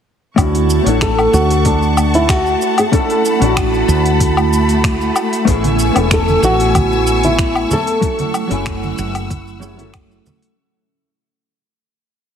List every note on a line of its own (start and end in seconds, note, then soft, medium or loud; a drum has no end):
0.36 0.79 D2 medium
0.36 0.81 A3 medium
0.36 10.55 A3 medium
0.36 0.82 C#4 medium
0.36 0.82 D4 medium
0.36 0.82 E4 medium
0.36 0.83 F#4 medium
0.36 5.44 F#5 medium
0.36 5.44 A5 medium
0.36 2.90 C#6 medium
0.36 kick loud
0.36 open hi-hat medium
0.36 cabasa soft
0.36 low woodblock medium
0.55 open hi-hat soft
0.55 cabasa soft
0.70 cabasa medium
0.83 1.26 A1 medium
0.83 2.87 A3 medium
0.83 2.89 D4 medium
0.83 2.88 C#5 medium
0.83 open hi-hat soft
0.87 2.90 E4 medium
0.87 2.90 A4 medium
0.87 cabasa soft
1.01 1.34 A4 loud
1.01 finger snap medium
1.01 kick loud
1.01 open hi-hat medium
1.01 cabasa soft
1.19 cabasa soft
1.19 low woodblock medium
1.33 2.54 D2 medium
1.33 1.66 F#4 medium
1.33 cabasa medium
1.50 open hi-hat soft
1.50 cabasa soft
1.65 2.15 D4 medium
1.65 kick loud
1.65 open hi-hat medium
1.65 cabasa soft
1.82 cabasa soft
1.97 cabasa medium
1.97 low woodblock medium
2.14 2.30 E4 medium
2.14 open hi-hat soft
2.14 cabasa soft
2.29 2.79 F#4 loud
2.29 finger snap medium
2.29 kick loud
2.29 open hi-hat medium
2.29 cabasa soft
2.46 cabasa soft
2.62 cabasa medium
2.78 2.84 G#4 medium
2.78 open hi-hat soft
2.78 cabasa soft
2.78 low woodblock medium
2.92 3.37 A3 medium
2.92 3.37 C#4 medium
2.92 3.37 D4 medium
2.92 3.38 E4 medium
2.92 4.81 A4 medium
2.92 3.38 A4 medium
2.92 5.45 B5 medium
2.92 kick loud
2.92 open hi-hat medium
2.92 cabasa soft
3.10 open hi-hat soft
3.10 cabasa soft
3.25 cabasa medium
3.39 3.82 A1 medium
3.39 5.43 A3 medium
3.39 5.44 C#4 medium
3.39 5.45 D4 medium
3.39 open hi-hat soft
3.39 cabasa soft
3.44 5.45 E4 medium
3.44 5.46 F#4 medium
3.57 finger snap loud
3.57 kick loud
3.57 open hi-hat soft
3.57 cabasa soft
3.57 low woodblock medium
3.74 cabasa soft
3.88 5.09 D2 medium
3.88 cabasa medium
4.05 open hi-hat soft
4.05 cabasa soft
4.20 kick loud
4.20 open hi-hat medium
4.20 cabasa soft
4.37 cabasa soft
4.37 low woodblock medium
4.53 cabasa medium
4.69 open hi-hat soft
4.69 cabasa soft
4.84 finger snap medium
4.84 kick loud
4.84 open hi-hat medium
4.84 cabasa soft
5.01 cabasa soft
5.16 cabasa medium
5.16 low woodblock medium
5.33 open hi-hat soft
5.33 cabasa soft
5.45 5.89 A1 medium
5.45 5.91 A3 medium
5.45 5.91 B3 medium
5.45 5.92 C#4 medium
5.45 5.92 E4 medium
5.45 5.93 G#4 loud
5.45 8.00 G#5 medium
5.45 10.54 C#6 medium
5.45 8.01 E6 medium
5.45 kick loud
5.45 open hi-hat soft
5.45 cabasa soft
5.64 open hi-hat soft
5.64 high conga medium
5.64 cabasa soft
5.79 cabasa medium
5.92 6.37 E1 medium
5.92 7.97 A3 medium
5.92 7.98 B3 medium
5.92 7.99 C#4 medium
5.92 open hi-hat soft
5.92 cabasa soft
5.92 low woodblock medium
5.97 8.00 E4 medium
5.97 8.00 A4 medium
6.11 6.44 A4 loud
6.11 finger snap loud
6.11 kick loud
6.11 open hi-hat medium
6.11 cabasa soft
6.28 high conga medium
6.28 cabasa soft
6.43 7.64 A1 medium
6.43 7.27 F#4 loud
6.43 cabasa medium
6.60 open hi-hat soft
6.60 cabasa soft
6.75 kick loud
6.75 open hi-hat medium
6.75 high conga loud
6.75 cabasa soft
6.75 low woodblock medium
6.92 cabasa soft
7.07 cabasa medium
7.23 7.73 E4 medium
7.23 open hi-hat soft
7.23 high conga medium
7.23 cabasa soft
7.39 finger snap loud
7.39 kick loud
7.39 open hi-hat soft
7.39 cabasa soft
7.55 cabasa soft
7.55 low woodblock medium
7.71 9.92 A4 loud
7.71 high conga medium
7.71 low conga medium
7.71 cabasa medium
7.87 open hi-hat soft
7.87 cabasa soft
8.01 8.46 F#3 medium
8.01 8.47 A3 medium
8.01 8.47 C#4 medium
8.01 8.48 E4 medium
8.01 8.48 A4 medium
8.01 10.55 F#5 medium
8.01 10.55 E6 medium
8.01 kick loud
8.01 open hi-hat medium
8.01 cabasa soft
8.19 open hi-hat soft
8.19 high conga medium
8.19 cabasa soft
8.34 cabasa medium
8.34 low woodblock medium
8.47 8.92 F#1 medium
8.47 9.57 F#3 medium
8.47 9.58 A3 medium
8.47 9.59 C#4 medium
8.47 open hi-hat soft
8.47 cabasa soft
8.52 9.60 E4 medium
8.52 9.60 G#5 loud
8.66 finger snap medium
8.66 kick loud
8.66 open hi-hat medium
8.66 cabasa soft
8.83 high conga medium
8.83 cabasa soft
8.98 10.20 F#1 medium
8.98 cabasa medium
9.15 open hi-hat soft
9.15 cabasa soft
9.15 low woodblock medium
9.30 kick loud
9.30 open hi-hat medium
9.30 high conga medium
9.30 cabasa soft
9.47 cabasa soft
9.60 9.73 F#3 medium
9.60 9.74 A3 medium
9.60 9.75 C#4 medium
9.60 9.75 E4 medium
9.60 9.75 G#4 medium
9.60 cabasa medium
9.75 10.52 F#3 medium
9.75 10.53 A3 medium
9.75 10.54 C#4 medium
9.79 10.55 E4 medium
9.79 10.56 A4 medium
9.79 open hi-hat soft
9.79 high conga medium
9.79 cabasa soft
9.94 finger snap medium
9.94 kick loud
9.94 open hi-hat soft
9.94 cabasa soft
9.94 low woodblock medium
10.11 cabasa soft
10.26 high conga medium
10.26 low conga medium
10.26 cabasa medium
10.42 open hi-hat soft
10.42 cabasa soft